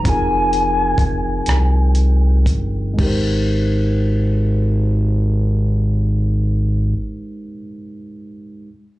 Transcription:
0.03 0.94 F1 loud
0.03 2.94 F3 soft
0.03 2.94 C4 soft
0.03 2.95 D#4 soft
0.03 2.96 F4 soft
0.03 kick medium
0.03 closed hi-hat medium
0.08 2.96 G#4 soft
0.08 2.97 A#4 medium
0.08 1.93 G#5 medium
0.53 closed hi-hat soft
0.98 1.42 F1 medium
0.98 kick medium
0.98 closed hi-hat medium
1.46 2.48 C2 medium
1.46 cross-stick medium
1.46 closed hi-hat medium
1.95 closed hi-hat soft
2.46 2.95 G1 medium
2.46 kick medium
2.46 closed hi-hat medium
2.94 7.42 G#3 medium
2.94 7.46 D#4 soft
2.99 6.94 G#1 medium
2.99 7.49 G4 soft
2.99 kick medium
2.99 crash medium
3.04 7.52 A#4 medium
3.04 7.55 C5 medium

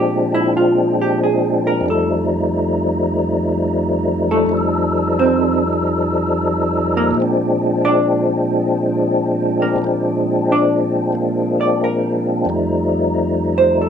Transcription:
0.00 1.84 A#2 medium
0.00 1.82 F3 medium
0.00 1.87 G#3 medium
0.00 1.88 C4 medium
0.00 1.90 D4 medium
0.00 0.33 G4 medium
0.34 0.54 E4 medium
0.57 0.99 F4 medium
1.02 1.21 G4 medium
1.24 1.65 G#4 medium
1.67 1.86 A#4 medium
1.81 4.45 F2 medium
1.81 4.48 F3 soft
1.86 4.51 G3 medium
1.86 4.52 A3 medium
1.90 4.54 D#4 medium
1.90 3.17 A4 medium
4.31 5.14 A3 medium
4.31 5.14 A4 medium
4.46 7.14 F2 medium
4.46 7.13 F3 medium
4.52 7.16 G3 soft
4.52 7.18 A4 soft
4.57 7.19 D#4 medium
5.19 5.62 C4 medium
5.19 5.62 C5 medium
6.97 7.79 A#3 medium
6.97 7.79 A#4 medium
7.11 9.75 A#2 medium
7.11 9.77 F3 medium
7.17 9.80 G#3 medium
7.17 9.83 C4 soft
7.22 9.84 D4 medium
7.85 8.27 D4 medium
7.85 8.27 D5 loud
9.62 10.45 A#3 medium
9.62 10.45 A#4 medium
9.76 12.44 A#2 medium
9.76 12.45 F3 medium
9.82 11.11 G#3 soft
9.82 12.48 C4 soft
9.87 11.14 D4 medium
10.52 10.78 D4 medium
10.52 10.78 D5 medium
11.12 12.46 G#3 soft
11.12 12.46 A#3 soft
11.12 12.47 D4 soft
11.61 11.81 D5 medium
11.84 12.26 A#4 medium
12.45 13.89 F2 medium
12.45 13.89 F3 medium
12.45 13.89 G3 medium
12.45 13.89 A3 medium
12.50 13.89 D#4 medium
13.58 13.79 C5 loud
13.82 13.89 A4 medium

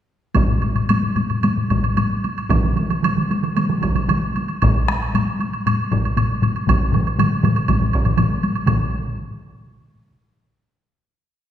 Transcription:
0.35 taiko medium
0.35 taiko low-mid medium
0.35 taiko high medium
0.35 high woodblock soft
0.48 taiko low-mid medium
0.48 taiko high soft
0.62 taiko low-mid medium
0.62 taiko high soft
0.62 high woodblock soft
0.75 taiko low-mid medium
0.75 taiko high soft
0.75 high woodblock soft
0.89 taiko low-mid medium
0.89 taiko high medium
0.89 high woodblock medium
1.03 taiko low-mid medium
1.03 taiko high soft
1.16 taiko low-mid medium
1.16 taiko high soft
1.16 high woodblock soft
1.30 taiko low-mid medium
1.30 taiko high soft
1.30 high woodblock soft
1.43 taiko low-mid medium
1.43 taiko high medium
1.43 high woodblock soft
1.57 taiko low-mid medium
1.57 taiko high soft
1.70 taiko medium
1.70 taiko low-mid medium
1.70 taiko high soft
1.70 high woodblock soft
1.83 taiko low-mid medium
1.83 high woodblock soft
1.97 taiko low-mid medium
1.97 taiko high medium
1.97 high woodblock soft
2.24 taiko high soft
2.24 high woodblock soft
2.38 taiko high soft
2.38 high woodblock soft
2.49 taiko medium
2.49 taiko mid medium
2.49 taiko high medium
2.49 high woodblock soft
2.64 taiko mid medium
2.64 taiko high soft
2.76 taiko mid medium
2.76 taiko high soft
2.76 high woodblock soft
2.90 taiko mid medium
2.90 taiko high soft
2.90 high woodblock soft
3.02 taiko mid medium
3.02 taiko high medium
3.02 high woodblock medium
3.16 taiko mid medium
3.16 taiko high soft
3.30 taiko mid medium
3.30 taiko high soft
3.30 high woodblock soft
3.43 taiko mid medium
3.43 high woodblock soft
3.55 taiko mid medium
3.55 taiko high medium
3.55 high woodblock soft
3.69 taiko mid medium
3.69 taiko high soft
3.82 taiko medium
3.82 taiko mid medium
3.82 taiko high medium
3.82 high woodblock soft
3.95 taiko mid medium
3.95 high woodblock soft
4.08 taiko mid medium
4.08 taiko high medium
4.08 high woodblock soft
4.24 taiko high soft
4.36 taiko high soft
4.36 high woodblock soft
4.48 taiko high soft
4.48 high woodblock soft
4.62 taiko medium
4.62 taiko low-mid medium
4.62 taiko high medium
4.62 high woodblock medium
4.76 taiko high soft
4.88 taiko rim medium
4.88 taiko high soft
4.88 high woodblock soft
5.02 taiko high soft
5.02 high woodblock soft
5.14 taiko low-mid medium
5.14 taiko high medium
5.14 high woodblock medium
5.40 taiko high soft
5.40 high woodblock soft
5.53 taiko high soft
5.53 high woodblock soft
5.66 taiko low-mid medium
5.66 taiko high medium
5.66 high woodblock medium
5.80 taiko high soft
5.92 taiko medium
5.92 taiko low-mid medium
5.92 taiko high medium
5.92 high woodblock soft
6.05 high woodblock soft
6.17 taiko low-mid medium
6.17 taiko high medium
6.17 high woodblock medium
6.30 taiko high soft
6.42 taiko low-mid medium
6.42 taiko high soft
6.42 high woodblock soft
6.55 taiko high soft
6.55 high woodblock soft
6.67 taiko medium
6.67 taiko low-mid medium
6.67 taiko mid medium
6.67 taiko high medium
6.67 high woodblock medium
6.80 taiko high soft
6.92 taiko low-mid medium
6.92 taiko mid medium
6.92 taiko high soft
6.92 high woodblock soft
7.06 taiko high soft
7.06 high woodblock soft
7.19 taiko low-mid medium
7.19 taiko mid medium
7.19 taiko high medium
7.19 high woodblock medium
7.32 taiko high soft
7.43 taiko low-mid medium
7.43 taiko mid medium
7.43 taiko high soft
7.43 high woodblock soft
7.56 taiko high soft
7.56 high woodblock soft
7.68 taiko medium
7.68 taiko low-mid medium
7.68 taiko mid medium
7.68 taiko high medium
7.68 high woodblock medium
7.80 taiko low-mid medium
7.80 taiko mid medium
7.80 taiko high soft
7.93 taiko medium
7.93 high woodblock soft
8.05 taiko low-mid medium
8.05 taiko mid medium
8.05 high woodblock soft
8.18 taiko low-mid medium
8.18 taiko mid medium
8.18 taiko high medium
8.18 high woodblock soft
8.31 taiko high soft
8.43 taiko high soft
8.43 high woodblock soft
8.55 taiko high soft
8.55 high woodblock soft
8.66 taiko medium
8.66 taiko low-mid loud
8.66 taiko mid medium
8.66 taiko high medium
8.66 high woodblock medium

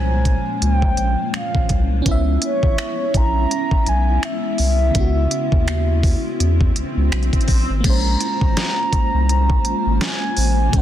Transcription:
0.00 0.38 C2 medium
0.00 2.00 A#2 medium
0.00 2.02 F3 medium
0.00 2.02 G#3 medium
0.00 2.02 A#3 medium
0.00 2.01 C#4 medium
0.00 2.03 C#4 medium
0.00 2.02 F4 medium
0.00 2.05 C5 medium
0.00 0.63 G#5 loud
0.25 kick medium
0.25 closed hi-hat medium
0.62 0.94 C#2 loud
0.62 1.31 G5 loud
0.62 closed hi-hat medium
0.82 kick medium
0.97 1.16 A#1 medium
0.97 closed hi-hat medium
1.34 1.88 F5 medium
1.34 finger snap loud
1.34 closed hi-hat medium
1.55 1.68 G#1 medium
1.55 kick medium
1.69 2.02 C2 medium
1.69 kick medium
1.69 closed hi-hat medium
2.02 4.91 B3 medium
2.02 7.44 B3 medium
2.02 4.89 C#4 medium
2.02 7.44 C#4 medium
2.02 kick loud
2.02 closed hi-hat medium
2.02 swell medium
2.06 2.38 C#2 loud
2.06 7.80 G#3 medium
2.06 7.44 E4 medium
2.06 4.92 E4 medium
2.11 4.94 E5 medium
2.42 3.18 C#5 loud
2.42 closed hi-hat medium
2.63 2.77 G#1 medium
2.63 kick loud
2.78 finger snap loud
2.78 closed hi-hat medium
3.14 3.46 A#1 medium
3.14 3.90 A#5 loud
3.14 kick medium
3.14 closed hi-hat medium
3.51 closed hi-hat medium
3.71 kick medium
3.86 4.19 B1 medium
3.86 4.26 G#5 loud
3.86 closed hi-hat medium
4.23 7.13 E5 medium
4.23 finger snap loud
4.23 closed hi-hat medium
4.58 4.91 C2 medium
4.58 open hi-hat medium
4.91 7.42 C#3 medium
4.91 7.44 B3 medium
4.91 closed hi-hat medium
4.95 5.27 C#2 loud
4.95 7.45 E4 medium
4.95 kick loud
5.00 7.47 F#4 medium
5.31 closed hi-hat medium
5.52 6.16 D#2 medium
5.52 kick medium
5.68 finger snap loud
5.68 closed hi-hat medium
6.03 kick medium
6.03 open hi-hat soft
6.40 6.72 E2 loud
6.40 closed hi-hat medium
6.61 kick loud
6.76 6.84 C#2 soft
6.76 closed hi-hat medium
6.97 7.10 C#2 medium
7.12 7.31 B1 loud
7.12 finger snap loud
7.12 closed hi-hat soft
7.23 closed hi-hat soft
7.33 kick medium
7.33 closed hi-hat medium
7.41 closed hi-hat soft
7.48 7.67 A#1 loud
7.48 kick loud
7.48 open hi-hat medium
7.70 7.83 G#1 medium
7.80 10.69 G#3 medium
7.80 10.82 G#3 medium
7.80 10.67 A#3 medium
7.80 10.82 A#3 medium
7.80 10.82 C#4 medium
7.80 10.82 F4 medium
7.80 10.82 C5 medium
7.80 kick loud
7.80 closed hi-hat medium
7.80 crash loud
7.85 8.16 A#1 loud
7.85 10.71 C#4 medium
7.85 9.98 A#5 loud
7.90 10.72 C5 medium
8.21 closed hi-hat medium
8.41 8.55 G#1 medium
8.41 kick loud
8.57 snare loud
8.57 closed hi-hat medium
8.93 9.01 C2 soft
8.93 kick medium
8.93 closed hi-hat medium
9.14 9.59 C2 medium
9.29 closed hi-hat medium
9.50 kick loud
9.65 9.74 G#1 soft
9.65 closed hi-hat medium
9.86 10.00 G#1 medium
10.01 10.77 G#5 loud
10.01 snare loud
10.01 closed hi-hat medium
10.37 10.69 A1 loud
10.37 open hi-hat medium
10.69 10.82 A#2 medium
10.69 10.82 G#3 medium
10.69 kick loud
10.73 10.82 A#1 loud
10.73 10.82 C#4 medium
10.73 10.82 F5 loud
10.73 closed hi-hat medium
10.78 10.82 C5 medium

